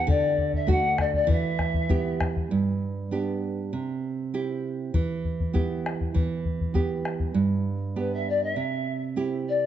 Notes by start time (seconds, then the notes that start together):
0.07 D3 D5, bombo low
0.38 bombo low
0.53 E5, bombo low
0.67 A3 D4 F#4 F#5, bombo low
0.98 D5, bombo rim, bombo low
1.13 D5, bombo low
1.27 E3 E5, bombo low
1.59 bombo rim, bombo low
1.74 bombo low
1.89 B3 E4 G4, bombo low
2.20 bombo rim, bombo low
2.36 bombo low
2.51 G2
3.11 B3 D4 G4
3.73 C3
4.34 C4 E4 G4
4.94 E3, bombo low
5.25 bombo low
5.40 bombo low
5.53 B3 E4 G4, bombo low
5.86 bombo rim
6.01 bombo low
6.14 E3, bombo low
6.45 bombo low
6.61 bombo low
6.74 B3 E4 G4, bombo low
7.05 bombo rim
7.20 bombo low
7.34 G2
7.96 B3 D4 G4 B4
8.13 E5
8.28 D5
8.43 E5
8.56 C3
9.16 C4 E4 G4
9.48 D5